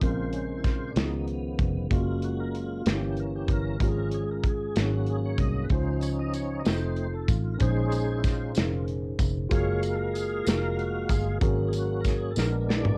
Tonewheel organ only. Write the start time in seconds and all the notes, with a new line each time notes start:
0.01 C#3 G#3 F4 C5
0.33 C#4
0.57 E4
0.66 F4
0.88 D4
0.95 D#3 F3 B3 D#4
1.90 F#3 G#3 A#3 F4
2.24 F#4
2.40 A#4
2.55 F4
2.87 E3 A#3 C#4 G4
3.20 A#4
3.36 G4
3.51 A#4
3.82 F3 G#3 C#4
4.14 G#4
4.31 A#4
4.48 G#4
4.77 F#3 A#3 C#4 F#4
5.10 G#4
5.25 C#5
5.40 D#5
5.63 B4
5.72 F3 C#4 D#4 C5
6.03 C#5
6.19 D#5
6.35 C#5
6.59 D#5
6.65 A3 C4 D#4 C5
7.13 A4
7.29 F4
7.54 A#4
7.61 G#3 C#4 D#4 G#4 C5
8.18 E4
8.26 F4
8.57 F4
9.52 G#3 A#3 C#5 F5
9.82 A#4
9.95 A4 A#4
10.13 G#4
10.45 A#4
10.76 F#4
10.94 F#4
11.10 G#3 A#3 F4 G#4
11.42 F#3 A#3 C#4
11.68 G#4
11.78 F#4
12.01 A#4
12.08 G#4
12.31 A4
12.37 G#3 B3 D4 A#4
12.69 D5